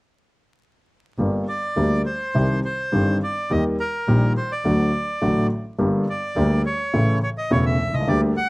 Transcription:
1.18 double bass G1, grand piano G1 G2 D3 G3 A#3 G4
1.48 bandoneon D5
1.76 grand piano D2 D3 G3 A#3 G4, double bass D2
2.06 bandoneon C5
2.34 double bass C2, grand piano C2 C3 D#3 G3 C4 G4
2.65 bandoneon C5
2.92 grand piano G1 G2 D#3 G3 C4 G4, double bass G1
3.23 bandoneon D5
3.50 double bass D#2, grand piano D#2 D#3 G3 A#3 G4, bandoneon D#5
3.80 bandoneon A#4
4.07 double bass A#1, grand piano A#1 A#2 D#3 G3 A#3 G4
4.37 bandoneon C5
4.52 bandoneon D5
4.64 double bass D2, grand piano D2 D3 F#3 A3 F#4
5.22 double bass A1, grand piano A1 A2 D3 F#3 A3 F#4
5.78 grand piano G1 G2 D3 G3 A#3 G4, double bass G1
6.10 bandoneon D5
6.36 double bass D2, grand piano D2 D3 G3 A#3 G4
6.66 bandoneon C#5
6.93 double bass A1, grand piano A1 A2 C#3 E3 A3 E4
7.23 bandoneon C#5
7.38 bandoneon D#5
7.51 double bass E1, grand piano E1 E2 C#3 E3 A3 E4, bandoneon C#5
7.66 bandoneon E5
7.80 double bass C2
7.87 grand piano B1
7.94 grand piano C2, bandoneon D#5
8.01 grand piano C#2
8.07 grand piano D2 D3 G3 A#3 G4, double bass D2, bandoneon D5
8.37 bandoneon F#5

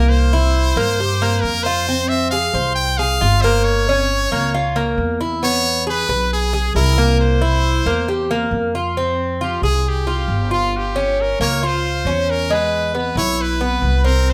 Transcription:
Already playing: upright bass C2, cuban tres A#3, trumpet A#4
0.09 trumpet C5
0.33 cuban tres E4
0.76 upright bass G2, cuban tres A#3
1.00 cuban tres G4
1.22 cuban tres A#3
1.42 upright bass F2, trumpet A#4
1.63 cuban tres F4, trumpet C5
1.88 cuban tres C4
2.08 trumpet E5
2.31 cuban tres G#4, trumpet F5
2.54 upright bass C2, cuban tres C5
2.75 trumpet G5
2.97 cuban tres G#4, trumpet F5
3.21 upright bass G1, cuban tres F4
3.41 cuban tres A#3, trumpet C5
3.64 trumpet C#5
3.89 cuban tres C#4
4.32 upright bass C#2, cuban tres A#3
4.54 cuban tres F4
4.76 cuban tres A#3
4.98 upright bass E2
5.21 cuban tres E4
5.43 cuban tres B3, trumpet C#5
5.87 cuban tres G#4, trumpet B4
6.09 upright bass B1, cuban tres B4
6.33 trumpet G#4
6.53 cuban tres G#4
6.75 upright bass C2, cuban tres E4, trumpet A#4
6.98 cuban tres A#3
7.21 trumpet C5
7.42 cuban tres E4
7.86 upright bass E2, cuban tres A#3
8.08 cuban tres G4
8.31 cuban tres A#3
8.51 upright bass F2
8.75 cuban tres F4
8.97 cuban tres C4
9.41 cuban tres F4, trumpet G4
9.62 upright bass C2, cuban tres G#4, trumpet G#4
9.89 trumpet G4
10.07 cuban tres F4
10.28 upright bass G1
10.51 cuban tres F4, trumpet F4
10.77 trumpet G4
10.96 cuban tres C#4
11.21 trumpet A#4
11.40 upright bass C#2, cuban tres A#3, trumpet C#5
11.63 cuban tres F4, trumpet C5
12.05 upright bass E2, cuban tres C#4
12.30 trumpet A#4
12.50 cuban tres G#3, trumpet B4
12.95 cuban tres B3, trumpet B4
13.15 upright bass B1, cuban tres E4, trumpet C#5
13.42 trumpet B4
13.61 cuban tres B3
13.82 upright bass C2
14.04 cuban tres C4, trumpet A#4
14.30 trumpet C5

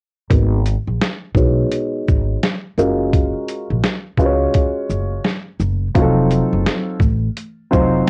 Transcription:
0.30 upright bass G#1, upright piano G#3 B3 D#4 F#4 A#4, kick, closed hi-hat
0.66 closed hi-hat, shaker
0.87 upright bass A#1
1.02 snare, closed hi-hat
1.35 upright bass B1, upright piano G#3 B3 D#4 F#4 C#5, kick, shaker
1.72 closed hi-hat
2.08 upright bass G#1, kick, shaker
2.43 snare, closed hi-hat
2.77 upright bass F#1, upright piano G#3 C#4 F4 F#4 A#4, shaker
3.13 kick, closed hi-hat
3.48 closed hi-hat, shaker
3.70 upright bass A#1
3.83 snare, closed hi-hat
4.17 upright bass C#2, upright piano G#3 C#4 F4 F#4 B4, kick, shaker
4.25 upright piano C#5
4.54 kick, closed hi-hat
4.90 upright bass F#1, shaker
5.25 snare, closed hi-hat
5.60 upright bass F#1, shaker
5.95 upright bass F1, upright piano F#3 C4 D#4 F4 F#4, kick, closed hi-hat
6.02 upright piano A4
6.31 closed hi-hat, shaker
6.53 upright bass F#1
6.66 snare, closed hi-hat
7.00 upright bass A1, kick, shaker
7.37 closed hi-hat
7.71 upright bass F1, upright piano F#3 C4 D#4 F4 C5, kick, shaker

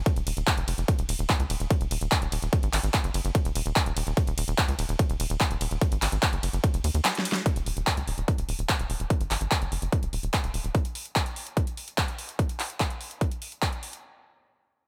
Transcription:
0.06 kick, closed hi-hat
0.16 analog synth bass D#1, closed hi-hat
0.27 analog synth bass D#1, open hi-hat, ride
0.37 analog synth bass D#1, closed hi-hat
0.47 kick, clap, closed hi-hat
0.57 analog synth bass F1, closed hi-hat
0.68 analog synth bass F1, open hi-hat, ride
0.78 analog synth bass F1, closed hi-hat
0.88 kick, closed hi-hat
0.99 analog synth bass D#1, closed hi-hat
1.09 analog synth bass D#1, open hi-hat, ride
1.19 analog synth bass D#1, closed hi-hat
1.29 kick, clap, closed hi-hat
1.40 analog synth bass C#2, closed hi-hat
1.50 analog synth bass D#1, open hi-hat, ride
1.60 analog synth bass D#1, closed hi-hat
1.71 kick, closed hi-hat
1.81 analog synth bass D#1, closed hi-hat
1.91 analog synth bass D#1, open hi-hat, ride
2.01 analog synth bass D#1, closed hi-hat
2.12 kick, clap, closed hi-hat
2.22 analog synth bass D#1, closed hi-hat
2.32 analog synth bass D#1, open hi-hat, ride
2.42 analog synth bass D#1, closed hi-hat
2.53 kick, closed hi-hat
2.63 analog synth bass G#1, closed hi-hat
2.73 analog synth bass G#1, clap, open hi-hat, ride
2.84 analog synth bass G#1, closed hi-hat
2.94 kick, clap, closed hi-hat
3.04 analog synth bass F#1, closed hi-hat
3.14 analog synth bass F#1, open hi-hat, ride
3.25 analog synth bass F#1, closed hi-hat
3.35 kick, closed hi-hat
3.45 analog synth bass D#1, closed hi-hat
3.55 analog synth bass D#1, open hi-hat, ride
3.66 analog synth bass D#1, closed hi-hat
3.76 kick, clap, closed hi-hat
3.86 analog synth bass D#1, closed hi-hat
3.97 analog synth bass D#1, open hi-hat, ride
4.07 analog synth bass D#1, closed hi-hat
4.17 kick, closed hi-hat
4.27 analog synth bass D#1, closed hi-hat
4.38 analog synth bass D#1, open hi-hat, ride
4.48 analog synth bass D#1, closed hi-hat
4.58 kick, clap, closed hi-hat
4.68 analog synth bass C#2, closed hi-hat
4.79 analog synth bass D#1, open hi-hat, ride
4.89 analog synth bass D#1, closed hi-hat
4.99 kick, closed hi-hat
5.10 analog synth bass D#1, closed hi-hat
5.20 analog synth bass D#1, open hi-hat, ride
5.30 analog synth bass D#1, closed hi-hat
5.40 kick, clap, closed hi-hat
5.51 analog synth bass D#1, closed hi-hat
5.61 analog synth bass D#1, open hi-hat, ride
5.71 analog synth bass D#1, closed hi-hat
5.81 kick, closed hi-hat
5.92 analog synth bass G#1, closed hi-hat
6.02 analog synth bass G#1, clap, open hi-hat, ride
6.12 analog synth bass G#1, closed hi-hat
6.23 kick, clap, closed hi-hat
6.33 analog synth bass F#1, closed hi-hat
6.43 analog synth bass F#1, open hi-hat, ride
6.53 analog synth bass F#1, closed hi-hat
6.64 kick, closed hi-hat
6.74 analog synth bass F1, closed hi-hat
6.84 analog synth bass D#2, open hi-hat, ride
6.94 analog synth bass D#2, closed hi-hat
7.05 snare, clap, closed hi-hat
7.15 snare, closed hi-hat
7.25 open hi-hat, ride
7.32 snare, closed hi-hat
7.46 kick, closed hi-hat
7.56 analog synth bass D#1, closed hi-hat
7.66 analog synth bass D#1, open hi-hat
7.77 analog synth bass D#1, closed hi-hat
7.87 kick, clap, closed hi-hat
7.97 analog synth bass C#2, closed hi-hat
8.08 analog synth bass D#1, open hi-hat
8.18 analog synth bass D#1, closed hi-hat
8.28 kick, closed hi-hat
8.38 analog synth bass D#1, closed hi-hat
8.49 analog synth bass D#1, open hi-hat
8.59 analog synth bass D#1, closed hi-hat
8.69 kick, clap, closed hi-hat
8.79 analog synth bass D#1, closed hi-hat
8.90 analog synth bass D#1, open hi-hat
9.00 analog synth bass D#1, closed hi-hat
9.10 kick, closed hi-hat
9.21 analog synth bass G#1, closed hi-hat
9.31 analog synth bass G#1, clap, open hi-hat
9.41 analog synth bass G#1, closed hi-hat
9.51 kick, clap, closed hi-hat
9.62 analog synth bass F#1, closed hi-hat
9.72 analog synth bass F#1, open hi-hat
9.82 analog synth bass F#1, closed hi-hat
9.92 kick, closed hi-hat
10.03 analog synth bass D#1, closed hi-hat
10.13 analog synth bass D#1, open hi-hat
10.23 analog synth bass D#1, closed hi-hat
10.34 kick, clap, closed hi-hat
10.44 analog synth bass D#1, closed hi-hat
10.54 analog synth bass D#1, open hi-hat
10.64 analog synth bass D#1, closed hi-hat
10.75 kick, closed hi-hat
10.85 closed hi-hat
10.95 open hi-hat
11.05 closed hi-hat
11.16 kick, clap, closed hi-hat
11.26 closed hi-hat
11.36 open hi-hat
11.47 closed hi-hat
11.57 kick, closed hi-hat
11.67 closed hi-hat
11.77 open hi-hat
11.88 closed hi-hat
11.98 kick, clap, closed hi-hat
12.08 closed hi-hat
12.19 open hi-hat
12.29 closed hi-hat
12.39 kick, closed hi-hat
12.49 closed hi-hat
12.60 clap, open hi-hat
12.70 closed hi-hat
12.80 kick, clap, closed hi-hat
12.90 closed hi-hat
13.01 open hi-hat
13.11 closed hi-hat
13.21 kick, closed hi-hat
13.31 closed hi-hat
13.42 open hi-hat
13.52 closed hi-hat
13.62 kick, clap, closed hi-hat
13.73 closed hi-hat
13.83 open hi-hat
13.93 closed hi-hat

